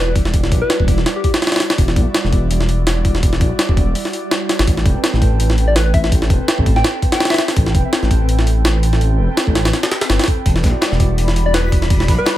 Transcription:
Already playing: E1
0.07 G3 E4 F#4 B4 D5
0.16 kick, open hi-hat
0.25 snare
0.34 E1 G3 E4 F#4 D5, kick, open hi-hat
0.44 snare
0.52 B1, kick, open hi-hat
0.62 B4
0.70 snare, open hi-hat
0.80 E1, kick
0.88 kick, open hi-hat
0.98 snare
1.06 snare, open hi-hat
1.16 G4
1.24 G4, kick, open hi-hat
1.34 snare, open hi-hat
1.42 snare, open hi-hat
1.47 snare, open hi-hat
1.52 G3 E4 F#4 D5, snare, open hi-hat
1.56 snare, open hi-hat
1.60 snare, open hi-hat
1.70 snare, open hi-hat
1.78 E1 G3 E4 F#4 D5, kick, open hi-hat
1.88 snare
1.96 B1, kick, open hi-hat
2.14 snare, open hi-hat
2.24 E1, snare
2.33 kick, open hi-hat
2.51 E1, open hi-hat
2.60 snare
2.69 open hi-hat
2.87 snare, open hi-hat
2.97 G3 E4 F#4 D5
3.05 kick, open hi-hat
3.15 snare
3.23 E1 G3 E4 F#4 D5, kick, open hi-hat
3.33 snare
3.41 B1, kick, open hi-hat
3.59 snare, open hi-hat
3.69 E1, kick
3.77 kick, open hi-hat
3.95 open hi-hat
4.05 snare
4.13 G3 E4 F#4 D5, open hi-hat
4.31 snare, open hi-hat
4.49 snare, open hi-hat
4.59 G1, snare, open hi-hat
4.67 A1 C4 A4 B4 G5, kick, open hi-hat
4.77 snare
4.86 E1, kick, open hi-hat
5.04 snare, open hi-hat
5.13 A1, snare
5.22 kick, open hi-hat
5.40 A1, open hi-hat
5.50 snare
5.58 open hi-hat
5.68 D5
5.76 B4, snare, open hi-hat
5.86 C4 A4 B4 G5
5.94 E5, kick, open hi-hat
6.04 E5, snare
6.12 A1 C4 A4 B4 G5, kick, open hi-hat
6.22 snare
6.30 E1, kick, open hi-hat
6.48 snare, open hi-hat
6.58 A1, kick
6.66 kick, open hi-hat
6.76 G5, snare
6.84 snare, open hi-hat
7.02 kick, open hi-hat
7.12 G5, snare, open hi-hat
7.20 snare, open hi-hat
7.25 snare, open hi-hat
7.30 C4 A4 B4 E5 G5, snare, open hi-hat
7.34 snare, open hi-hat
7.38 snare, open hi-hat
7.48 snare, open hi-hat
7.56 A1 C4 A4 B4 G5, kick, open hi-hat
7.66 snare
7.75 E1, kick, open hi-hat
7.93 snare, open hi-hat
8.03 A1, snare
8.11 kick, open hi-hat
8.29 A1, open hi-hat
8.39 snare
8.47 open hi-hat
8.65 snare, open hi-hat
8.75 C4 A4 B4 G5
8.83 open hi-hat
8.93 snare
9.01 A1 C4 A4 B4 G5, open hi-hat
9.19 E1
9.37 snare, open hi-hat
9.47 A1, kick
9.55 snare, open hi-hat
9.65 snare, open hi-hat
9.73 snare, open hi-hat
9.83 snare, open hi-hat
9.91 C4 A4 B4 G5, snare, open hi-hat
10.01 snare, open hi-hat
10.10 G1, snare, open hi-hat
10.19 snare, open hi-hat
10.24 snare, open hi-hat
10.28 kick, open hi-hat
10.46 E1 G3 E4 F#4 D5 B5, kick, closed hi-hat, open hi-hat
10.56 snare, closed hi-hat
10.63 B1, kick, snare, closed hi-hat, open hi-hat
10.82 snare, closed hi-hat, open hi-hat
10.91 E1, snare
11.00 kick, closed hi-hat, open hi-hat
11.18 E1, closed hi-hat, open hi-hat
11.28 snare, closed hi-hat
11.36 closed hi-hat, open hi-hat
11.46 D5
11.54 B4, snare, closed hi-hat, open hi-hat
11.64 G3 E4 F#4 B4 D5
11.72 kick, closed hi-hat, open hi-hat
11.82 snare, closed hi-hat
11.90 E1 G3 E4 F#4 D5, kick, open hi-hat
12.00 snare
12.08 B1, kick, snare, closed hi-hat, open hi-hat
12.18 B4
12.26 snare, closed hi-hat, open hi-hat

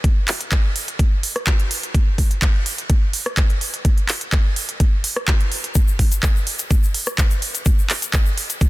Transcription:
0.04 kick, closed hi-hat
0.28 clap, open hi-hat
0.41 closed hi-hat
0.52 kick, clap, closed hi-hat
0.76 open hi-hat
0.88 closed hi-hat
0.99 kick, closed hi-hat
1.23 open hi-hat
1.36 cross-stick, closed hi-hat
1.47 kick, clap, closed hi-hat
1.59 closed hi-hat
1.71 open hi-hat
1.83 closed hi-hat
1.94 kick, closed hi-hat
2.18 kick, open hi-hat
2.31 closed hi-hat
2.42 kick, clap, closed hi-hat
2.66 open hi-hat
2.78 closed hi-hat
2.90 kick, closed hi-hat
3.13 open hi-hat
3.26 cross-stick, closed hi-hat
3.37 kick, clap, closed hi-hat
3.50 closed hi-hat
3.61 open hi-hat
3.74 closed hi-hat
3.85 kick, closed hi-hat
3.98 closed hi-hat
4.09 clap, open hi-hat
4.21 closed hi-hat
4.32 kick, clap, closed hi-hat
4.56 open hi-hat
4.69 closed hi-hat
4.80 kick, closed hi-hat
5.04 open hi-hat
5.16 cross-stick, closed hi-hat
5.28 kick, clap, closed hi-hat
5.40 closed hi-hat
5.52 open hi-hat
5.64 closed hi-hat
5.75 kick, closed hi-hat, shaker
5.88 shaker
5.99 kick, open hi-hat
6.12 closed hi-hat, shaker
6.23 kick, clap, closed hi-hat, shaker
6.36 shaker
6.47 open hi-hat
6.59 closed hi-hat, shaker
6.71 kick, closed hi-hat, shaker
6.83 shaker
6.94 open hi-hat
7.07 cross-stick, closed hi-hat, shaker
7.18 kick, clap, closed hi-hat, shaker
7.30 closed hi-hat, shaker
7.42 open hi-hat
7.55 closed hi-hat, shaker
7.65 kick, closed hi-hat, shaker
7.79 shaker
7.90 clap, open hi-hat
8.02 closed hi-hat, shaker
8.13 kick, clap, closed hi-hat, shaker
8.26 shaker
8.38 open hi-hat
8.50 closed hi-hat, shaker
8.61 kick, closed hi-hat, shaker

